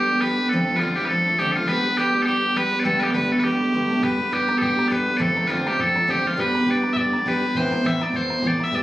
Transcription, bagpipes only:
0.00 0.21 G4 medium
0.21 0.49 B4 medium
0.49 0.76 A4 medium
0.76 0.96 F4 medium
0.76 0.79 B4 medium
0.96 1.04 G4 medium
1.04 1.39 A4 medium
1.04 1.08 B4 medium
1.39 1.51 G4 medium
1.51 1.68 F4 medium
1.51 1.55 A4 medium
1.68 1.97 B4 loud
1.97 2.22 G4 medium
2.22 2.57 G4 medium
2.22 2.25 A4 medium
2.57 2.80 B4 medium
2.80 2.84 D5 medium
2.84 3.00 A4 medium
3.00 3.11 G4 medium
3.00 3.03 B4 medium
3.11 3.32 B4 medium
3.11 3.14 D5 medium
3.32 3.39 A4 medium
3.39 3.43 B4 medium
3.43 4.03 G4 medium
4.03 4.33 B4 medium
4.33 4.58 G4 medium
4.58 4.62 A4 medium
4.62 4.88 G4 medium
4.88 4.92 D5 medium
4.92 5.17 B4 medium
5.17 5.21 D5 medium
5.21 5.47 A4 medium
5.47 5.67 F4 medium
5.47 5.50 B4 medium
5.67 5.80 G4 medium
5.80 6.10 A4 medium
6.10 6.27 G4 medium
6.27 6.40 F4 medium
6.40 6.71 B4 medium
6.71 6.93 D5 medium
6.93 6.97 E5 medium
6.97 7.28 D5 medium
7.28 7.57 B4 medium
7.57 7.86 C5 medium
7.86 8.03 E5 medium
8.03 8.16 D5 medium
8.16 8.47 C5 medium
8.47 8.64 D5 medium
8.64 8.75 E5 medium
8.75 8.83 D5 medium

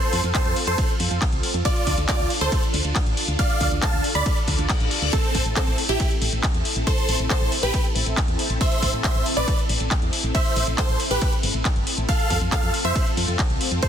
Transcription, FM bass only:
0.13 0.21 F2 medium
0.24 0.32 F2 medium
0.46 0.54 F2 medium
0.67 0.76 F2 medium
1.00 1.08 F2 loud
1.11 1.19 F2 medium
1.32 1.41 C2 medium
1.54 1.63 F2 medium
1.87 1.95 D2 loud
1.98 2.06 D2 medium
2.19 2.28 D2 medium
2.41 2.50 D2 medium
2.74 2.82 D2 loud
2.85 2.93 D2 medium
3.06 3.15 A1 medium
3.28 3.36 D2 medium
3.61 3.69 D2 medium
3.72 3.80 D2 medium
3.93 4.02 D2 medium
4.15 4.23 D2 medium
4.48 4.56 D2 medium
4.59 4.67 D2 medium
4.80 4.89 A1 medium
5.02 5.10 D2 medium
5.35 5.43 A1 loud
5.46 5.54 A1 medium
5.67 5.76 A1 medium
5.89 5.97 A1 medium
6.22 6.30 A1 loud
6.33 6.41 A1 medium
6.54 6.63 E2 medium
6.76 6.84 A1 medium
7.09 7.17 A1 medium
7.20 7.28 A1 medium
7.41 7.50 A1 medium
7.63 7.71 A1 medium
7.96 8.04 A1 loud
8.06 8.15 A1 medium
8.28 8.37 E2 medium
8.50 8.58 A1 medium
8.83 8.91 A1 medium
8.93 9.02 A1 medium
9.15 9.23 A1 medium
9.37 9.45 A1 medium
9.69 9.78 A1 medium
9.80 9.89 A1 medium
10.02 10.10 E2 medium
10.24 10.32 A1 medium
10.56 10.65 A1 loud
10.67 10.76 A1 medium
10.89 10.97 A1 medium
11.11 11.19 A1 medium
11.43 11.52 G1 loud
11.54 11.63 A1 medium
11.76 11.84 G1 medium
11.98 12.06 A1 medium
12.30 12.39 F2 loud
12.41 12.49 F2 medium
12.63 12.71 F2 medium
12.85 12.93 F2 medium
13.17 13.26 F2 loud
13.28 13.36 F2 medium
13.50 13.58 C2 medium
13.72 13.80 F2 medium

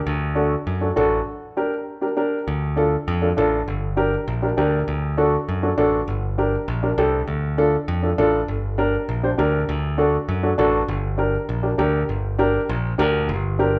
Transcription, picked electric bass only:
0.07 0.55 D2 medium
0.67 0.91 F#2 medium
0.97 1.21 A1 loud
2.48 2.96 D2 medium
3.08 3.32 F2 medium
3.38 3.62 A1 loud
3.68 4.16 G1 medium
4.28 4.52 A#1 medium
4.58 4.82 D2 medium
4.88 5.36 D2 medium
5.49 5.72 F#2 medium
5.78 6.02 A1 medium
6.08 6.56 G1 medium
6.68 6.92 A#1 medium
6.98 7.22 C2 medium
7.28 7.76 D2 medium
7.88 8.12 F2 medium
8.18 8.42 A1 medium
8.48 8.96 G1 medium
9.09 9.33 A#1 medium
9.39 9.63 D2 medium
9.69 10.17 D2 medium
10.29 10.53 F#2 medium
10.59 10.83 A1 loud
10.88 11.37 G1 medium
11.49 11.73 A#1 medium
11.79 12.03 D2 medium
12.09 12.57 G1 medium
12.69 12.93 A#1 loud
12.99 13.30 D2 loud
13.29 13.77 G1 medium

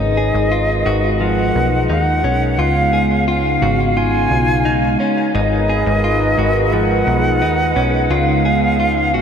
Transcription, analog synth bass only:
0.00 0.32 G#1 loud
0.35 0.84 G#1 medium
0.86 1.52 G#1 medium
1.56 1.88 B1 medium
1.90 2.23 D#2 medium
2.24 2.57 B1 medium
2.59 3.58 C#2 medium
3.62 4.28 G#1 loud
4.31 4.97 B1 medium
5.35 5.84 G#1 loud
5.87 6.36 G#1 medium
6.38 7.04 G#1 medium
7.07 7.43 B1 medium
7.42 7.74 D#2 medium
7.76 8.09 B1 medium
8.10 9.15 C#2 medium
9.14 9.22 G#1 medium

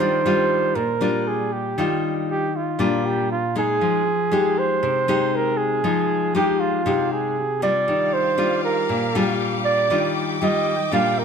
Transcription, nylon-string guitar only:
0.00 0.73 D#3 medium
0.00 0.21 G3 medium
0.00 0.21 D4 medium
0.00 0.21 F4 medium
0.26 0.76 G3 medium
0.26 0.76 D4 medium
0.26 0.76 F4 medium
0.75 1.74 A#2 medium
1.01 1.73 G3 medium
1.01 1.73 D4 medium
1.01 1.73 F4 medium
1.78 2.77 D#3 medium
1.78 2.46 G3 soft
1.78 2.46 D4 medium
1.78 2.46 F4 medium
2.79 3.78 A#2 medium
2.79 3.29 G3 medium
2.79 3.30 D4 medium
2.79 3.30 F4 medium
3.56 4.02 G#3 medium
3.56 4.02 D#4 medium
3.81 4.80 F3 medium
4.32 5.03 G#3 medium
4.32 5.04 D#4 medium
4.32 5.04 G4 medium
4.83 5.81 C3 medium
5.08 5.80 G#3 medium
5.08 5.80 D#4 medium
5.08 5.80 G4 medium
5.84 6.83 F3 medium
5.84 6.30 G#3 soft
5.84 6.31 D#4 medium
6.35 6.81 G#3 medium
6.35 6.82 D#4 medium
6.35 6.82 G4 medium
6.86 7.85 C3 medium
6.86 7.36 G#3 medium
6.86 7.36 D#4 medium
6.86 7.37 G4 medium
7.62 8.34 G3 medium
7.62 8.34 D4 medium
7.62 8.34 F4 medium
7.88 8.87 D#3 medium
8.38 9.10 G3 medium
8.38 9.10 D4 medium
8.38 9.10 F4 medium
8.89 9.88 A#2 medium
9.15 9.87 G3 medium
9.15 9.87 D4 medium
9.15 9.87 F4 medium
9.90 10.90 D#3 medium
9.90 10.37 G3 medium
9.90 10.37 D4 medium
9.90 10.38 F4 medium
10.42 10.74 G3 medium
10.42 10.75 F4 medium
10.92 11.25 A#2 medium
10.92 11.25 G3 medium
10.92 11.25 D4 medium
10.92 11.25 F4 medium

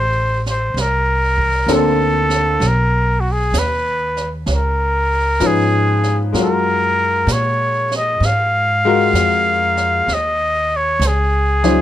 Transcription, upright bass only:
0.00 0.72 A1 medium
0.74 1.64 C2 medium
1.67 2.57 D2 medium
2.60 3.50 B1 medium
3.52 4.43 D#2 medium
4.47 5.37 C#2 medium
5.40 6.31 G#2 medium
6.33 7.24 F#2 medium
7.27 8.18 A#2 medium
8.20 9.11 G#2 medium
9.13 10.04 F2 medium
10.07 10.97 D#2 medium
10.99 11.81 C#2 medium

